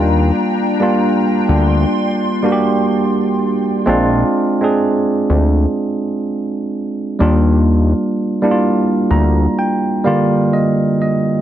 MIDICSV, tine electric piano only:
0, 0, Header, 1, 2, 480
1, 0, Start_track
1, 0, Key_signature, -3, "major"
1, 0, Tempo, 952381
1, 27, Time_signature, 4, 2, 24, 8
1, 5753, End_track
2, 0, Start_track
2, 0, Title_t, "Tine electric piano"
2, 0, Program_c, 0, 4
2, 0, Control_c, 0, 64, 127
2, 0, Note_on_c, 0, 55, 91
2, 0, Note_on_c, 0, 58, 82
2, 0, Note_on_c, 0, 62, 80
2, 0, Note_on_c, 0, 65, 98
2, 293, Note_off_c, 0, 55, 0
2, 295, Note_off_c, 0, 58, 0
2, 298, Note_off_c, 0, 62, 0
2, 301, Note_off_c, 0, 65, 0
2, 402, Note_on_c, 0, 55, 80
2, 407, Note_on_c, 0, 58, 73
2, 414, Note_on_c, 0, 62, 77
2, 418, Note_on_c, 0, 65, 90
2, 1108, Note_off_c, 0, 55, 0
2, 1110, Note_off_c, 0, 58, 0
2, 1113, Note_off_c, 0, 62, 0
2, 1115, Note_off_c, 0, 65, 0
2, 1222, Note_on_c, 0, 55, 87
2, 1228, Note_on_c, 0, 58, 80
2, 1232, Note_on_c, 0, 62, 78
2, 1239, Note_on_c, 0, 66, 77
2, 1270, Note_on_c, 0, 67, 98
2, 1271, Note_off_c, 0, 66, 0
2, 1848, Note_off_c, 0, 55, 0
2, 1851, Note_off_c, 0, 58, 0
2, 1853, Note_off_c, 0, 62, 0
2, 1872, Note_off_c, 0, 67, 0
2, 1945, Note_on_c, 0, 56, 116
2, 1950, Note_on_c, 0, 60, 106
2, 1953, Control_c, 0, 64, 0
2, 1955, Note_on_c, 0, 62, 102
2, 1960, Note_on_c, 0, 65, 127
2, 2032, Control_c, 0, 64, 127
2, 2258, Note_off_c, 0, 56, 0
2, 2261, Note_off_c, 0, 60, 0
2, 2264, Note_off_c, 0, 62, 0
2, 2266, Note_off_c, 0, 65, 0
2, 2323, Note_on_c, 0, 56, 82
2, 2327, Note_on_c, 0, 60, 76
2, 2333, Note_on_c, 0, 62, 73
2, 2339, Note_on_c, 0, 68, 90
2, 3117, Note_off_c, 0, 56, 0
2, 3120, Note_off_c, 0, 60, 0
2, 3123, Note_off_c, 0, 62, 0
2, 3125, Note_off_c, 0, 68, 0
2, 3624, Note_on_c, 0, 55, 89
2, 3629, Note_on_c, 0, 58, 80
2, 3634, Control_c, 0, 64, 0
2, 3634, Note_on_c, 0, 62, 82
2, 3639, Note_on_c, 0, 65, 94
2, 3727, Control_c, 0, 64, 127
2, 4134, Note_off_c, 0, 55, 0
2, 4136, Note_off_c, 0, 58, 0
2, 4139, Note_off_c, 0, 62, 0
2, 4141, Note_off_c, 0, 65, 0
2, 4242, Note_on_c, 0, 55, 85
2, 4247, Note_on_c, 0, 58, 79
2, 4252, Note_on_c, 0, 62, 75
2, 4257, Note_on_c, 0, 64, 75
2, 4279, Note_off_c, 0, 64, 0
2, 4290, Note_on_c, 0, 65, 93
2, 4591, Note_on_c, 0, 82, 70
2, 4813, Note_off_c, 0, 82, 0
2, 4832, Note_on_c, 0, 79, 75
2, 4948, Note_off_c, 0, 55, 0
2, 4950, Note_off_c, 0, 58, 0
2, 4952, Note_off_c, 0, 62, 0
2, 4971, Note_off_c, 0, 65, 0
2, 5053, Note_off_c, 0, 79, 0
2, 5062, Note_on_c, 0, 55, 94
2, 5066, Note_on_c, 0, 58, 81
2, 5069, Note_on_c, 0, 77, 77
2, 5072, Note_on_c, 0, 50, 84
2, 5077, Note_on_c, 0, 65, 92
2, 5292, Note_off_c, 0, 77, 0
2, 5309, Note_on_c, 0, 75, 70
2, 5531, Note_off_c, 0, 75, 0
2, 5552, Note_on_c, 0, 75, 69
2, 5688, Note_off_c, 0, 55, 0
2, 5690, Note_off_c, 0, 58, 0
2, 5693, Note_off_c, 0, 50, 0
2, 5695, Note_off_c, 0, 65, 0
2, 5753, Note_off_c, 0, 75, 0
2, 5753, End_track
0, 0, End_of_file